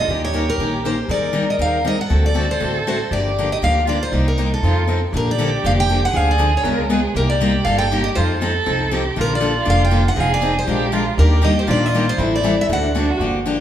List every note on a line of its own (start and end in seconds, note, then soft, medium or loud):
0.00 0.10 A4 medium
0.00 0.21 D#5 medium
0.08 0.48 D#2 medium
0.08 0.26 D#3 medium
0.08 0.26 A#3 medium
0.08 0.27 C#4 medium
0.08 0.98 G4 medium
0.08 0.27 G4 medium
0.08 0.27 A#4 medium
0.24 0.49 C#5 medium
0.33 0.43 D#3 medium
0.33 0.43 A#3 medium
0.33 0.43 C#4 medium
0.33 0.44 G4 medium
0.33 0.44 A#4 medium
0.49 0.82 A#4 medium
0.58 0.99 A#1 medium
0.58 0.77 D#3 medium
0.58 0.77 A#3 medium
0.58 0.77 C#4 medium
0.58 0.77 G4 medium
0.58 0.78 A#4 medium
0.85 0.94 D#3 medium
0.85 0.94 A#3 medium
0.85 0.95 C#4 medium
0.85 0.94 G4 medium
0.85 0.95 A#4 medium
0.85 1.11 C5 medium
1.08 1.49 G#1 medium
1.08 1.27 D#3 medium
1.08 1.27 G3 medium
1.08 1.27 C4 medium
1.08 1.27 D#4 medium
1.08 1.27 G#4 medium
1.08 2.06 A#4 medium
1.08 1.50 D5 medium
1.33 1.44 D#3 medium
1.33 1.44 G3 medium
1.33 1.44 C4 medium
1.33 1.44 D#4 medium
1.33 1.44 G#4 medium
1.50 1.55 D#5 medium
1.58 1.99 D#2 medium
1.58 1.77 D#3 medium
1.58 1.77 G3 medium
1.58 1.78 C4 medium
1.58 1.77 D#4 medium
1.58 1.78 G#4 medium
1.58 1.84 F5 medium
1.85 1.95 D#3 medium
1.85 1.95 G3 medium
1.85 1.95 C4 medium
1.85 1.95 D#4 medium
1.85 1.95 G#4 medium
1.85 2.01 D#5 medium
2.01 2.25 F#5 medium
2.09 2.50 D2 medium
2.09 2.28 D3 medium
2.09 2.28 A3 medium
2.09 2.28 C4 medium
2.09 2.29 F#4 medium
2.09 3.12 A4 medium
2.09 2.28 A4 medium
2.26 2.51 D5 medium
2.34 2.45 D3 medium
2.34 2.45 A3 medium
2.34 2.45 C4 medium
2.34 2.46 F#4 medium
2.34 2.46 A4 medium
2.51 2.87 C5 medium
2.60 3.01 A1 medium
2.60 2.78 D3 medium
2.60 2.78 A3 medium
2.60 2.79 C4 medium
2.60 2.79 F#4 medium
2.60 2.79 A4 medium
2.87 2.97 D3 medium
2.87 2.97 A3 medium
2.87 2.97 C4 medium
2.87 2.97 F#4 medium
2.87 2.97 A4 medium
2.87 3.11 C5 medium
3.11 3.52 G1 medium
3.11 3.29 D3 medium
3.11 3.30 F3 medium
3.11 3.30 A#3 medium
3.11 3.30 D4 medium
3.11 3.86 G4 medium
3.11 3.30 G4 medium
3.11 3.52 D5 medium
3.38 3.48 D3 medium
3.38 3.48 F3 medium
3.38 3.48 A#3 medium
3.38 3.48 D4 medium
3.38 3.48 G4 medium
3.52 3.57 D#5 medium
3.62 4.02 D2 medium
3.62 3.80 D3 medium
3.62 3.80 F3 medium
3.62 3.80 A#3 medium
3.62 3.80 D4 medium
3.62 3.81 G4 medium
3.62 3.89 F5 medium
3.85 3.97 D3 medium
3.85 3.98 F3 medium
3.85 3.97 A#3 medium
3.85 3.97 D4 medium
3.85 4.09 F4 medium
3.85 3.98 G4 medium
3.89 4.01 D5 medium
4.03 4.27 C5 medium
4.10 4.53 C2 medium
4.10 4.31 C3 medium
4.10 4.31 G3 medium
4.10 4.31 A#3 medium
4.10 4.58 D#4 medium
4.10 4.31 D#4 medium
4.14 4.31 G4 medium
4.28 4.51 A#4 medium
4.38 4.48 C3 medium
4.38 4.48 G3 medium
4.38 4.48 A#3 medium
4.38 4.48 D#4 medium
4.38 4.48 G4 medium
4.54 5.00 A4 medium
4.62 5.03 F2 medium
4.62 4.81 F3 medium
4.62 4.82 C4 medium
4.62 4.82 D#4 medium
4.62 4.89 F4 medium
4.62 4.82 A4 medium
4.87 4.98 F3 medium
4.87 5.12 C4 medium
4.87 4.98 C4 medium
4.87 4.98 D#4 medium
4.87 4.99 A4 medium
5.12 5.53 A#1 medium
5.12 5.32 D3 medium
5.12 5.32 F3 medium
5.12 5.32 A#3 medium
5.12 5.32 D4 medium
5.12 6.10 G4 medium
5.12 5.32 A4 medium
5.17 5.30 A#4 medium
5.31 5.63 D5 medium
5.38 5.49 D3 medium
5.38 5.49 F3 medium
5.38 5.49 A#3 medium
5.38 5.49 D4 medium
5.38 5.49 A4 medium
5.64 6.04 F1 medium
5.64 5.82 D3 medium
5.64 5.82 F3 medium
5.64 5.83 A#3 medium
5.64 5.83 D4 medium
5.64 5.83 A4 medium
5.64 5.71 F5 loud
5.80 6.05 G5 loud
5.89 5.99 D3 medium
5.89 5.99 F3 medium
5.89 6.00 A#3 medium
5.89 6.00 D4 medium
5.89 6.00 A4 medium
6.05 6.16 F#5 medium
6.12 6.54 D2 medium
6.12 6.32 D3 medium
6.12 6.32 F3 medium
6.12 6.32 C4 medium
6.12 6.33 D4 medium
6.12 6.64 G#4 loud
6.12 6.32 G#4 medium
6.16 6.30 F5 medium
6.31 6.56 D5 medium
6.38 6.49 D3 medium
6.38 6.49 F3 medium
6.38 6.49 C4 medium
6.38 6.50 D4 medium
6.38 6.49 G#4 loud
6.57 6.79 C#5 medium
6.63 7.05 C#2 medium
6.63 6.83 C#3 medium
6.63 6.83 G#3 medium
6.63 6.83 B3 medium
6.63 6.83 F4 medium
6.63 6.83 G#4 medium
6.63 6.92 A#4 medium
6.90 7.00 C#3 medium
6.90 7.00 G#3 medium
6.90 7.00 B3 medium
6.90 7.00 F4 medium
6.90 7.15 G#4 medium
6.90 7.00 G#4 medium
7.15 7.55 C2 medium
7.15 7.34 C3 medium
7.15 7.34 G3 medium
7.15 7.34 A#3 medium
7.15 7.34 D#4 medium
7.15 7.67 G4 medium
7.15 7.34 G4 medium
7.15 7.30 A#4 medium
7.30 7.67 D5 medium
7.41 7.51 C3 medium
7.41 7.51 G3 medium
7.41 7.51 A#3 medium
7.41 7.51 D#4 loud
7.41 7.51 G4 medium
7.65 8.06 G1 medium
7.65 7.84 C3 medium
7.65 7.84 G3 medium
7.65 7.85 A#3 medium
7.65 7.84 D#4 medium
7.65 7.84 G4 medium
7.65 7.90 A4 loud
7.65 7.78 F5 medium
7.78 8.03 G5 medium
7.91 8.01 C3 medium
7.91 8.01 G3 medium
7.91 8.02 A#3 medium
7.91 8.02 D#4 medium
7.91 8.17 G4 loud
7.91 8.02 G4 medium
8.04 8.09 D#5 medium
8.15 8.56 F2 medium
8.15 8.34 F3 medium
8.15 8.34 C4 medium
8.15 8.34 D#4 medium
8.15 8.39 F4 medium
8.15 8.34 A4 medium
8.15 8.52 C5 medium
8.40 8.51 F3 medium
8.40 8.51 C4 medium
8.40 8.52 D#4 medium
8.40 8.94 A4 loud
8.40 8.52 A4 loud
8.66 9.07 C2 medium
8.66 8.84 F3 medium
8.66 8.84 C4 medium
8.66 8.84 D#4 medium
8.66 8.84 A4 medium
8.91 9.02 F3 medium
8.91 9.02 C4 medium
8.91 9.02 D#4 medium
8.91 9.20 G4 medium
8.91 9.02 A4 medium
9.16 9.57 A#1 medium
9.16 9.34 D3 medium
9.16 9.34 F3 medium
9.16 9.35 A#3 medium
9.16 9.35 D4 medium
9.16 10.16 F4 medium
9.16 9.35 A4 medium
9.21 9.32 A#4 medium
9.35 9.67 D5 medium
9.40 9.51 D3 medium
9.40 9.51 F3 medium
9.40 9.52 A#3 medium
9.40 9.52 D4 medium
9.40 9.51 A4 loud
9.65 10.07 F1 medium
9.65 9.84 D3 medium
9.65 9.84 F3 medium
9.65 9.84 A#3 medium
9.65 9.84 D4 medium
9.65 9.84 A4 medium
9.70 9.83 F5 loud
9.85 10.08 G5 medium
9.91 10.02 D3 medium
9.91 10.02 F3 medium
9.91 10.02 A#3 medium
9.91 10.02 D4 medium
9.91 10.02 A4 medium
10.08 10.20 F#5 medium
10.16 10.57 F1 medium
10.16 10.35 F3 medium
10.16 10.35 C4 medium
10.16 10.35 D#4 medium
10.16 10.64 G#4 medium
10.16 10.35 G#4 medium
10.20 10.33 F5 loud
10.34 10.56 D5 medium
10.41 10.52 F3 medium
10.41 10.52 C4 medium
10.41 10.52 D#4 medium
10.41 10.53 G#4 loud
10.59 10.81 C5 medium
10.67 11.08 A#1 medium
10.67 10.86 F3 medium
10.67 10.86 G#3 medium
10.67 10.86 D4 medium
10.67 10.86 F4 medium
10.67 10.94 G4 loud
10.67 10.86 A#4 medium
10.92 11.03 F3 medium
10.92 11.03 G#3 medium
10.92 11.03 D4 medium
10.92 11.17 F4 medium
10.92 11.03 F4 medium
10.92 11.03 A#4 medium
11.18 11.58 D#2 loud
11.18 11.36 D#3 medium
11.18 11.37 G3 medium
11.18 11.37 A#3 medium
11.18 11.37 D4 medium
11.18 11.69 G4 medium
11.18 11.37 G4 medium
11.18 11.44 A#4 medium
11.42 11.53 D#3 medium
11.42 11.53 G3 loud
11.42 11.53 A#3 medium
11.42 11.53 D4 medium
11.42 11.53 G4 loud
11.42 11.57 D#5 medium
11.59 11.68 C5 medium
11.67 12.08 A#1 medium
11.67 11.86 D#3 medium
11.67 11.86 G3 medium
11.67 11.86 A#3 medium
11.67 11.86 D4 medium
11.67 12.19 F4 medium
11.67 11.86 G4 medium
11.67 11.86 D5 medium
11.86 12.10 D#5 medium
11.94 12.04 D#3 medium
11.94 12.04 G3 medium
11.94 12.05 A#3 medium
11.94 12.04 D4 medium
11.94 12.05 G4 medium
12.09 12.35 C5 medium
12.18 12.59 A1 loud
12.18 12.37 E3 medium
12.18 12.37 G3 medium
12.18 12.37 C4 medium
12.18 12.71 E4 medium
12.18 12.37 E4 medium
12.18 12.37 A4 medium
12.36 12.58 D5 medium
12.43 12.54 E3 medium
12.43 12.54 G3 medium
12.43 12.54 C4 medium
12.43 12.55 E4 loud
12.43 12.54 A4 loud
12.61 12.65 E5 medium
12.68 13.09 D2 medium
12.68 12.87 D3 medium
12.68 12.88 A3 medium
12.68 12.88 C4 medium
12.68 12.94 D4 medium
12.68 12.88 F#4 medium
12.68 12.88 A4 medium
12.73 13.08 F#5 loud
12.95 13.05 D3 medium
12.95 13.05 A3 medium
12.95 13.05 C4 medium
12.95 13.11 D4 medium
12.95 13.05 F#4 medium
12.95 13.05 A4 loud
13.10 13.20 F#4 medium
13.19 13.60 G1 medium
13.19 13.38 D3 medium
13.19 13.38 F3 medium
13.19 13.39 A#3 medium
13.19 13.39 D4 medium
13.19 13.39 G4 medium
13.46 13.56 D3 medium
13.46 13.55 F3 medium
13.46 13.56 A#3 medium
13.46 13.56 D4 loud
13.46 13.56 G4 loud